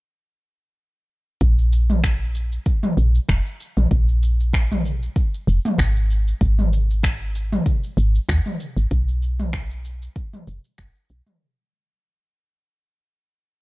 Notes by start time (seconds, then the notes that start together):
1.41 A#1, kick, shaker
1.58 shaker
1.73 shaker
1.90 mid tom, shaker
2.04 finger snap, kick, shaker
2.35 shaker
2.52 shaker
2.66 kick, shaker
2.83 mid tom, shaker
2.97 A#1, shaker
3.15 shaker
3.29 F1, finger snap, kick, shaker
3.46 shaker
3.60 shaker
3.77 A#1, mid tom, shaker
3.91 A#1, kick, shaker
4.08 shaker
4.23 shaker
4.40 shaker
4.53 finger snap, kick, shaker
4.72 mid tom, shaker
4.86 shaker
5.03 shaker
5.16 kick, shaker
5.34 shaker
5.47 F1, shaker
5.65 mid tom, shaker
5.78 G#1, finger snap, kick, shaker
5.97 shaker
6.10 shaker
6.28 shaker
6.41 G#1, kick, shaker
6.59 mid tom, shaker
6.73 shaker
6.90 shaker
7.03 finger snap, kick, shaker
7.35 shaker
7.53 mid tom, shaker
7.66 kick, shaker
7.84 shaker
7.97 G#1, shaker
8.15 shaker
8.29 D#2, finger snap, kick, shaker
8.46 mid tom, shaker
8.60 shaker
8.77 G#1, shaker
8.91 B1, kick, shaker
9.08 shaker
9.22 shaker
9.40 mid tom, shaker
9.53 finger snap, kick, shaker
9.71 shaker
9.85 shaker
10.02 shaker
10.16 kick, shaker
10.33 mid tom, shaker
10.47 F#1, shaker
10.64 shaker
10.78 F#1, finger snap, kick, shaker
10.96 shaker
11.09 B1, shaker
11.27 mid tom, shaker